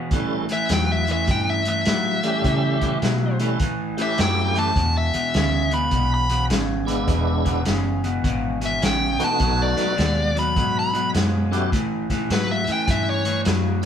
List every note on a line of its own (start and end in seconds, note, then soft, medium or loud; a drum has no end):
0.11 0.68 A2 medium
0.11 0.45 A2 medium
0.11 0.46 E3 medium
0.11 0.45 G3 medium
0.11 0.45 A3 soft
0.11 0.45 C#4 soft
0.11 0.46 E4 medium
0.11 kick loud
0.11 closed hi-hat medium
0.49 0.68 A2 medium
0.49 0.68 E3 medium
0.49 0.70 E5 medium
0.49 closed hi-hat medium
0.69 1.26 E2 medium
0.69 1.04 A2 medium
0.69 1.04 F#3 medium
0.69 snare medium
0.69 closed hi-hat medium
0.73 0.90 G5 medium
0.92 1.09 E5 medium
1.07 1.26 A2 medium
1.07 1.26 E3 medium
1.07 closed hi-hat soft
1.12 1.29 E5 medium
1.27 1.84 G2 medium
1.27 1.62 A2 medium
1.27 1.62 E3 medium
1.27 1.48 G5 medium
1.27 kick loud
1.27 closed hi-hat medium
1.50 1.67 E5 medium
1.65 1.84 A2 medium
1.65 1.85 E3 medium
1.65 3.38 E5 medium
1.65 closed hi-hat medium
1.85 2.20 A2 medium
1.85 2.43 A2 medium
1.85 2.20 F#3 medium
1.85 snare loud
1.85 closed hi-hat medium
2.23 2.42 A2 medium
2.23 2.42 E3 medium
2.23 2.98 G3 medium
2.23 2.98 A3 medium
2.23 2.98 C#4 medium
2.23 2.98 G4 medium
2.23 closed hi-hat medium
2.44 2.78 A2 medium
2.44 3.00 C#3 medium
2.44 2.78 E3 medium
2.44 kick loud
2.44 closed hi-hat medium
2.81 3.00 A2 medium
2.81 3.00 E3 medium
2.81 kick medium
2.81 closed hi-hat medium
3.02 3.36 A2 medium
3.02 3.59 B2 medium
3.02 3.36 F#3 medium
3.02 snare loud
3.02 closed hi-hat medium
3.39 3.58 A2 medium
3.39 3.58 E3 medium
3.39 3.58 G3 medium
3.39 3.58 A3 medium
3.39 3.58 C#4 medium
3.39 3.59 E4 medium
3.39 closed hi-hat medium
3.60 4.16 A2 medium
3.60 3.94 A2 medium
3.60 3.94 E3 medium
3.60 kick loud
3.60 closed hi-hat medium
3.97 4.16 A2 medium
3.97 4.17 E3 medium
3.97 4.72 A3 medium
3.97 4.72 C#4 medium
3.97 4.72 E4 medium
3.97 4.72 G4 medium
3.97 closed hi-hat medium
4.02 4.19 E5 medium
4.18 4.75 F#2 medium
4.18 4.52 A2 medium
4.18 4.52 F#3 medium
4.18 4.57 G5 medium
4.18 snare loud
4.18 closed hi-hat medium
4.56 4.74 A2 medium
4.56 4.74 E3 medium
4.56 4.95 A5 medium
4.56 closed hi-hat medium
4.76 5.11 E2 medium
4.76 5.10 E2 medium
4.76 5.10 B2 medium
4.76 kick loud
4.76 closed hi-hat medium
4.97 5.72 E5 medium
5.14 5.32 E2 medium
5.14 5.32 B2 medium
5.14 muted fingered electric bass stroke soft
5.14 closed hi-hat medium
5.34 5.91 D2 medium
5.34 5.68 E2 medium
5.34 5.68 C#3 medium
5.34 snare loud
5.34 closed hi-hat medium
5.71 5.90 E2 medium
5.71 5.90 B2 medium
5.71 6.11 B5 medium
5.71 closed hi-hat medium
5.91 6.49 B1 medium
5.91 6.26 E2 medium
5.91 6.26 B2 medium
5.91 kick loud
5.91 closed hi-hat medium
6.14 6.44 B5 loud
6.29 6.48 E2 medium
6.29 6.48 B2 medium
6.29 closed hi-hat medium
6.50 7.07 G#1 medium
6.50 6.84 E2 medium
6.50 6.84 C#3 medium
6.50 snare loud
6.50 closed hi-hat medium
6.85 7.06 E2 medium
6.85 7.06 B2 medium
6.85 7.61 G#3 medium
6.85 7.62 B3 medium
6.85 7.62 D4 medium
6.85 7.62 E4 medium
6.85 closed hi-hat medium
7.08 7.64 E1 medium
7.08 7.42 E2 medium
7.08 7.42 B2 medium
7.08 kick loud
7.08 closed hi-hat medium
7.45 7.64 E2 medium
7.45 7.64 B2 medium
7.45 kick medium
7.45 closed hi-hat medium
7.65 8.23 F#1 medium
7.65 8.00 E2 medium
7.65 8.00 C#3 medium
7.65 snare medium
7.65 closed hi-hat medium
8.04 8.22 E2 medium
8.04 8.22 B2 medium
8.04 closed hi-hat medium
8.24 8.81 G#1 medium
8.24 8.58 E2 medium
8.24 8.58 B2 medium
8.24 kick loud
8.24 closed hi-hat medium
8.61 8.80 E2 medium
8.61 8.80 B2 medium
8.61 closed hi-hat medium
8.66 8.83 E5 medium
8.82 9.18 A1 medium
8.82 9.16 E2 medium
8.82 9.16 C#3 medium
8.82 9.21 G5 medium
8.82 snare loud
8.82 closed hi-hat medium
9.19 9.38 E2 medium
9.19 9.38 B2 medium
9.19 9.94 A3 medium
9.19 9.94 B3 medium
9.19 9.94 D#4 medium
9.19 9.94 F#4 medium
9.19 muted fingered electric bass stroke soft
9.19 closed hi-hat medium
9.24 9.60 A5 medium
9.39 9.75 B1 medium
9.39 9.73 B2 medium
9.39 9.74 F#3 medium
9.39 kick loud
9.39 closed hi-hat medium
9.62 10.36 D5 medium
9.77 9.96 B2 medium
9.77 9.96 F#3 medium
9.77 muted fingered electric bass stroke soft
9.77 snare soft
9.77 closed hi-hat medium
9.97 10.55 D#2 medium
9.97 10.31 B2 medium
9.97 10.31 G#3 medium
9.97 snare loud
9.97 closed hi-hat medium
10.35 10.54 B2 medium
10.35 10.54 F#3 medium
10.35 10.76 B5 medium
10.35 closed hi-hat medium
10.56 11.13 G#2 medium
10.56 10.90 B2 medium
10.56 10.90 F#3 medium
10.56 kick loud
10.56 closed hi-hat medium
10.79 11.08 B5 medium
10.93 11.12 B2 medium
10.93 11.12 F#3 medium
10.93 closed hi-hat medium
11.14 11.71 F#2 medium
11.14 11.48 B2 medium
11.14 11.48 G#3 loud
11.14 snare loud
11.14 closed hi-hat medium
11.51 11.70 B2 medium
11.51 11.71 F#3 medium
11.51 11.70 A3 medium
11.51 11.70 C#4 medium
11.51 11.70 E4 medium
11.51 11.71 G4 medium
11.51 closed hi-hat medium
11.72 12.06 A2 medium
11.72 12.29 A2 medium
11.72 12.06 E3 medium
11.72 kick loud
11.72 closed hi-hat medium
12.10 12.28 A2 medium
12.10 12.29 E3 medium
12.10 kick medium
12.10 snare soft
12.10 closed hi-hat medium
12.30 12.65 G#2 medium
12.30 12.64 A2 medium
12.30 12.64 F#3 medium
12.30 12.50 B4 medium
12.30 snare loud
12.30 closed hi-hat medium
12.51 12.69 E5 medium
12.67 12.86 A2 medium
12.67 12.87 E3 medium
12.67 muted fingered electric bass stroke soft
12.67 closed hi-hat medium
12.72 12.89 G5 medium
12.88 13.44 G2 medium
12.88 13.22 A2 medium
12.88 13.22 E3 medium
12.88 13.08 E5 medium
12.88 kick loud
12.88 closed hi-hat medium
13.10 13.40 C#5 medium
13.25 13.44 A2 medium
13.25 13.44 E3 medium
13.25 closed hi-hat medium
13.45 13.85 F#2 medium
13.45 13.79 A2 medium
13.45 13.79 F#3 medium
13.45 snare loud
13.45 closed hi-hat medium
13.82 13.85 B3 medium
13.82 13.85 D4 medium